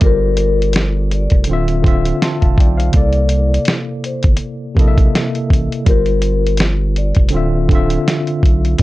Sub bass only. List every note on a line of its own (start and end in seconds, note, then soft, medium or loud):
0.02 1.28 G1 loud
1.32 1.46 F1 medium
1.49 2.13 D1 medium
2.43 2.56 E1 medium
2.58 2.90 B1 medium
2.94 3.59 C2 loud
4.25 4.39 G1 medium
4.77 5.09 A#1 medium
5.50 5.69 A1 medium
5.87 7.13 G1 loud
7.17 7.31 F1 medium
7.34 7.98 D1 loud
8.43 8.76 B1 loud